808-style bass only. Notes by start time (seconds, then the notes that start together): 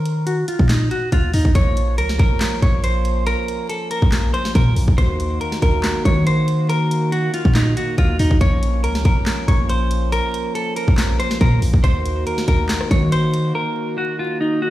Already playing: D#3
0.59 A#2
1.12 D#2
1.34 D#2
1.45 D#2
1.55 A#1
1.98 C#2
2.19 A#1
2.62 A#1
4.02 A#1
4.55 A#2
4.77 A#1
4.88 A#1
4.98 D#2
5.62 D#2
6.05 D#3
7.45 A#2
7.98 D#2
8.19 D#2
8.31 D#2
8.41 A#1
8.84 C#2
9.05 A#1
9.48 A#1
10.88 A#1
11.41 A#2
11.62 A#1
11.74 A#1
11.84 D#2
12.48 D#2
12.91 D#3